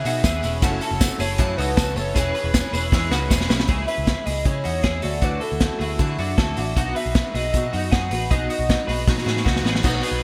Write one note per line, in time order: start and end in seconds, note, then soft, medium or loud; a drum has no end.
0.00 0.24 E5 loud
0.05 0.21 B2 medium
0.05 0.25 B3 soft
0.05 0.25 C#4 medium
0.05 0.25 D#4 medium
0.05 0.24 F#4 medium
0.05 0.24 G#4 medium
0.05 open hi-hat medium
0.05 tambourine medium
0.24 0.40 D#2 loud
0.24 0.43 E3 medium
0.24 0.44 B3 medium
0.24 0.44 C#4 medium
0.24 0.42 E4 medium
0.24 0.43 G#4 medium
0.24 0.51 E5 medium
0.24 kick loud
0.24 snare loud
0.24 hi-hat pedal medium
0.24 ride medium
0.24 tambourine medium
0.43 0.59 E1 loud
0.43 0.63 B3 soft
0.43 0.62 C#4 medium
0.43 0.63 C#4 medium
0.43 0.62 E4 medium
0.43 0.63 G#4 medium
0.43 open hi-hat medium
0.43 tambourine soft
0.61 0.78 F#1 loud
0.61 0.82 F#2 medium
0.61 0.82 C#3 loud
0.61 0.82 E3 loud
0.61 0.82 A3 loud
0.61 2.12 C#4 medium
0.61 0.82 C#4 medium
0.61 0.81 C#4 loud
0.61 2.12 E4 medium
0.61 0.81 F#4 loud
0.61 2.13 F#4 medium
0.61 0.81 A4 loud
0.61 2.13 A4 medium
0.61 kick loud
0.61 hi-hat pedal medium
0.61 ride medium
0.61 tambourine medium
0.81 0.99 E3 medium
0.81 1.00 A3 medium
0.81 1.00 C#4 medium
0.81 1.18 F#4 medium
0.81 1.01 A4 medium
0.81 1.18 A4 medium
0.81 open hi-hat medium
0.81 tambourine soft
0.91 1.07 F#1 loud
1.01 1.20 E3 medium
1.01 1.20 A3 medium
1.01 1.19 C#4 medium
1.01 1.18 A4 medium
1.01 kick loud
1.01 snare loud
1.01 hi-hat pedal medium
1.01 ride medium
1.01 tambourine loud
1.19 1.36 F#1 loud
1.19 1.38 E3 soft
1.19 1.38 A3 medium
1.19 1.38 C#4 medium
1.19 1.56 E4 medium
1.19 1.56 G#4 medium
1.19 1.38 A4 medium
1.19 1.55 C#5 loud
1.19 open hi-hat medium
1.19 tambourine medium
1.38 1.58 F#2 medium
1.38 1.55 F#2 loud
1.38 1.58 C#3 medium
1.38 1.58 E3 medium
1.38 1.58 A3 medium
1.38 1.58 C#4 medium
1.38 1.57 A4 loud
1.38 kick loud
1.38 hi-hat pedal medium
1.38 ride medium
1.38 tambourine soft
1.57 1.74 C#2 medium
1.57 1.77 E3 medium
1.57 1.78 A3 medium
1.57 1.78 C#4 medium
1.57 1.77 D#4 medium
1.57 1.77 F#4 medium
1.57 1.77 A4 medium
1.57 1.98 B4 loud
1.57 open hi-hat medium
1.57 tambourine soft
1.77 1.93 C#2 medium
1.77 1.97 E3 medium
1.77 1.97 A3 medium
1.77 1.97 C#4 medium
1.77 1.96 F#4 medium
1.77 1.95 A4 loud
1.77 1.96 A4 medium
1.77 kick loud
1.77 snare loud
1.77 hi-hat pedal medium
1.77 ride medium
1.77 tambourine loud
1.95 2.12 F#1 loud
1.95 2.15 E3 medium
1.95 2.16 A3 soft
1.95 2.16 C#4 medium
1.95 2.14 A4 medium
1.95 2.16 A4 medium
1.95 3.30 C#5 loud
1.95 2.15 C#5 medium
1.95 open hi-hat medium
1.95 tambourine soft
2.14 2.32 E1 loud
2.14 2.35 E3 medium
2.14 2.35 G#3 medium
2.14 3.65 C#4 medium
2.14 2.35 C#4 medium
2.14 3.66 E4 medium
2.14 2.34 E4 medium
2.14 2.34 G#4 loud
2.14 3.66 G#4 medium
2.14 2.35 G#4 medium
2.14 3.67 B4 medium
2.14 kick loud
2.14 hi-hat pedal medium
2.14 ride medium
2.14 tambourine medium
2.18 2.34 B4 loud
2.34 2.53 C#4 soft
2.34 2.71 G#4 medium
2.34 2.53 G#4 medium
2.34 2.70 B4 medium
2.34 2.54 B4 medium
2.34 open hi-hat medium
2.44 2.60 E1 loud
2.54 2.73 G#3 medium
2.54 2.73 C#4 medium
2.54 2.73 G#4 medium
2.54 2.72 B4 medium
2.54 kick loud
2.54 snare loud
2.54 hi-hat pedal medium
2.54 ride medium
2.54 tambourine loud
2.73 2.89 E1 medium
2.73 2.92 C#4 medium
2.73 3.09 E4 medium
2.73 3.09 G#4 medium
2.73 2.93 G#4 medium
2.73 2.92 B4 medium
2.73 open hi-hat medium
2.73 tambourine medium
2.92 3.09 E2 loud
2.92 3.12 E3 medium
2.92 3.12 G#3 loud
2.92 3.12 C#4 loud
2.92 3.11 G#4 loud
2.92 3.10 B4 loud
2.92 kick loud
2.92 snare medium
3.11 3.27 C#2 medium
3.11 3.29 C#4 medium
3.11 3.31 D#4 medium
3.11 3.30 F#4 medium
3.11 3.30 G#4 medium
3.11 3.30 B4 medium
3.11 snare medium
3.11 tambourine medium
3.30 3.47 E1 loud
3.30 3.49 G#3 medium
3.30 3.49 C#4 medium
3.30 3.48 E4 medium
3.30 3.49 G#4 medium
3.30 3.48 G#4 medium
3.30 3.48 B4 medium
3.30 kick loud
3.30 snare medium
3.30 tambourine medium
3.41 snare medium
3.49 3.66 B1 medium
3.49 3.68 C#4 medium
3.49 3.69 C#4 medium
3.49 3.68 E4 medium
3.49 3.68 G#4 medium
3.49 3.68 B4 medium
3.49 snare loud
3.49 tambourine soft
3.60 snare loud
3.68 3.85 C#2 medium
3.68 3.87 C#3 medium
3.68 3.88 G#3 medium
3.68 3.88 C#4 medium
3.68 3.87 E4 medium
3.68 3.88 E4 medium
3.68 3.87 G#4 medium
3.68 3.85 G#4 medium
3.68 kick loud
3.68 closed hi-hat medium
3.86 4.05 C#4 soft
3.86 4.06 E4 soft
3.86 4.06 G#4 soft
3.86 4.24 G#4 medium
3.86 4.24 B4 medium
3.86 4.27 E5 loud
3.86 open hi-hat medium
3.98 4.14 C#2 medium
4.05 4.25 G#3 medium
4.05 4.26 C#4 medium
4.05 4.26 E4 medium
4.05 4.25 G#4 medium
4.05 kick medium
4.05 snare loud
4.05 closed hi-hat medium
4.26 4.43 C#2 medium
4.26 4.44 C#4 soft
4.26 4.45 E4 soft
4.26 4.63 E4 medium
4.26 4.45 G#4 medium
4.26 4.62 G#4 medium
4.26 4.47 D#5 loud
4.26 open hi-hat medium
4.45 4.64 C#3 medium
4.45 4.62 C#3 medium
4.45 4.65 G#3 medium
4.45 4.65 C#4 medium
4.45 4.64 E4 medium
4.45 4.63 G#4 medium
4.45 5.06 C#5 loud
4.45 kick loud
4.45 closed hi-hat medium
4.64 4.81 E2 medium
4.64 4.82 C#4 soft
4.64 4.84 D#4 medium
4.64 4.82 E4 soft
4.64 4.83 F#4 medium
4.64 4.83 G#4 medium
4.64 open hi-hat medium
4.83 5.00 E2 medium
4.83 5.02 G#3 medium
4.83 5.03 C#4 medium
4.83 5.03 E4 medium
4.83 5.02 E4 medium
4.83 5.03 G#4 medium
4.83 5.02 G#4 medium
4.83 kick loud
4.83 snare loud
4.83 closed hi-hat medium
5.02 5.20 D2 medium
5.02 5.22 A3 soft
5.02 5.22 E4 soft
5.02 5.22 F#4 soft
5.02 5.20 F#4 medium
5.02 5.22 A4 medium
5.02 5.25 D5 medium
5.02 open hi-hat medium
5.21 5.39 D2 loud
5.21 5.42 D3 medium
5.21 5.42 E3 medium
5.21 5.42 A3 medium
5.21 5.41 D4 medium
5.21 5.42 E4 medium
5.21 5.40 F#4 medium
5.21 5.41 F#4 medium
5.21 5.44 B4 medium
5.21 kick loud
5.21 closed hi-hat medium
5.40 5.62 A3 soft
5.40 5.62 E4 soft
5.40 5.78 F#4 medium
5.40 5.61 F#4 soft
5.40 5.77 A4 medium
5.40 6.00 A4 medium
5.40 open hi-hat medium
5.52 5.68 D2 loud
5.60 5.81 E3 medium
5.60 5.81 A3 medium
5.60 5.80 E4 medium
5.60 kick loud
5.60 snare loud
5.60 closed hi-hat medium
5.64 5.80 F#4 medium
5.79 5.96 D2 medium
5.79 6.16 E4 medium
5.79 5.99 E4 soft
5.79 6.00 F#4 medium
5.79 6.16 G#4 medium
5.79 open hi-hat medium
5.83 5.99 A3 soft
5.99 6.16 D3 loud
5.99 6.19 D3 medium
5.99 6.19 E3 medium
5.99 6.19 A3 loud
5.99 6.19 E4 medium
5.99 6.17 F#4 medium
5.99 kick loud
5.99 closed hi-hat medium
6.18 6.35 F#2 medium
6.18 6.37 A3 soft
6.18 6.38 D4 medium
6.18 6.38 E4 medium
6.18 6.38 F#4 medium
6.18 6.37 F#4 medium
6.18 open hi-hat medium
6.37 6.54 D2 medium
6.37 6.57 E3 medium
6.37 6.57 A3 medium
6.37 6.58 E4 medium
6.37 6.56 F#4 medium
6.37 6.57 A4 medium
6.37 kick loud
6.37 snare loud
6.37 closed hi-hat medium
6.57 6.73 A1 medium
6.57 6.77 A3 soft
6.57 6.76 D4 medium
6.57 6.77 E4 medium
6.57 6.75 F#4 medium
6.57 6.76 F#4 medium
6.57 open hi-hat medium
6.76 6.93 B1 loud
6.76 6.96 B2 medium
6.76 6.96 F#3 medium
6.76 6.96 B3 loud
6.76 6.96 D#4 medium
6.76 6.96 D#4 loud
6.76 6.95 F#4 loud
6.76 kick loud
6.76 closed hi-hat medium
6.95 7.15 B3 soft
6.95 7.15 D#4 soft
6.95 7.15 F#4 soft
6.95 7.32 G#4 medium
6.95 7.31 B4 medium
6.95 7.37 E5 loud
6.95 open hi-hat medium
7.06 7.22 B1 loud
7.15 7.34 F#3 medium
7.15 7.35 B3 medium
7.15 7.35 D#4 medium
7.15 7.34 F#4 medium
7.15 kick loud
7.15 snare loud
7.15 closed hi-hat medium
7.34 7.50 B1 medium
7.34 7.54 B3 soft
7.34 7.54 D#4 medium
7.34 7.71 E4 medium
7.34 7.54 F#4 medium
7.34 7.70 G#4 medium
7.34 7.93 D#5 loud
7.34 open hi-hat medium
7.54 7.70 B2 medium
7.54 7.73 B2 medium
7.54 7.74 F#3 medium
7.54 7.74 B3 medium
7.54 7.74 D#4 medium
7.54 7.74 F#4 medium
7.54 kick loud
7.54 closed hi-hat medium
7.73 7.89 F#2 medium
7.73 7.94 B3 soft
7.73 7.91 D#4 medium
7.73 7.93 D#4 medium
7.73 7.91 F#4 medium
7.73 7.93 F#4 medium
7.73 open hi-hat medium
7.91 8.12 F#3 medium
7.91 8.12 B3 medium
7.91 8.11 D#4 medium
7.91 8.12 D#4 medium
7.91 8.11 G#4 medium
7.91 8.30 F#5 loud
7.91 kick loud
7.91 snare loud
7.91 closed hi-hat medium
7.96 8.11 F#4 medium
8.11 8.27 A1 medium
8.11 8.31 B3 soft
8.11 8.31 D#4 soft
8.11 8.31 F#4 medium
8.11 8.29 G#4 medium
8.11 8.30 B4 medium
8.11 open hi-hat medium
8.30 8.47 B1 loud
8.30 8.50 B2 medium
8.30 8.50 F#3 medium
8.30 8.50 B3 medium
8.30 8.49 D#4 medium
8.30 8.50 D#4 medium
8.30 8.49 F#4 medium
8.30 8.49 G#4 loud
8.30 9.42 D#5 loud
8.30 kick loud
8.30 closed hi-hat medium
8.49 8.70 B3 soft
8.49 8.86 D#4 medium
8.49 8.69 D#4 soft
8.49 8.85 F#4 medium
8.49 8.69 F#4 medium
8.49 open hi-hat medium
8.59 8.75 B1 loud
8.69 8.88 F#3 medium
8.69 8.89 B3 medium
8.69 8.89 D#4 medium
8.69 8.88 F#4 medium
8.69 kick loud
8.69 snare loud
8.69 closed hi-hat medium
8.87 9.04 B1 medium
8.87 9.07 B3 soft
8.87 9.07 D#4 medium
8.87 9.07 F#4 medium
8.87 9.24 G#4 medium
8.87 9.24 B4 medium
8.87 open hi-hat medium
9.07 9.26 B2 medium
9.07 9.24 B2 loud
9.07 9.27 F#3 medium
9.07 9.27 B3 medium
9.07 9.26 D#4 medium
9.07 9.25 F#4 loud
9.07 kick loud
9.07 snare medium
9.18 snare soft
9.25 9.42 A2 medium
9.25 9.44 B3 soft
9.25 9.45 D#4 medium
9.25 9.45 E4 medium
9.25 9.45 F#4 medium
9.25 9.44 G#4 medium
9.25 snare medium
9.37 snare medium
9.44 9.62 C#2 medium
9.44 9.64 F#3 medium
9.44 9.64 B3 medium
9.44 9.64 D#4 medium
9.44 9.63 D#4 medium
9.44 9.64 F#4 medium
9.44 9.62 F#4 medium
9.44 kick loud
9.44 snare medium
9.56 snare medium
9.63 9.80 A1 medium
9.63 9.82 B3 soft
9.63 9.83 D#4 medium
9.63 9.83 F#4 medium
9.63 9.84 G#4 medium
9.63 9.84 B4 medium
9.63 snare loud
9.75 snare medium
9.83 10.00 B1 loud
9.83 10.03 B2 medium
9.83 10.03 F#3 medium
9.83 10.03 B3 medium
9.83 10.23 D#4 medium
9.83 10.01 D#4 medium
9.83 10.03 D#4 medium
9.83 10.03 F#4 medium
9.83 10.23 F#4 medium
9.83 10.00 F#4 loud
9.83 10.23 B4 medium
9.83 kick loud
9.83 crash medium
9.83 tambourine medium
10.01 10.21 B3 soft
10.01 10.22 D#4 medium
10.01 10.21 F#4 medium
10.01 10.23 G#4 medium
10.01 10.23 B4 medium
10.01 open hi-hat medium
10.01 tambourine soft
10.11 10.23 B1 loud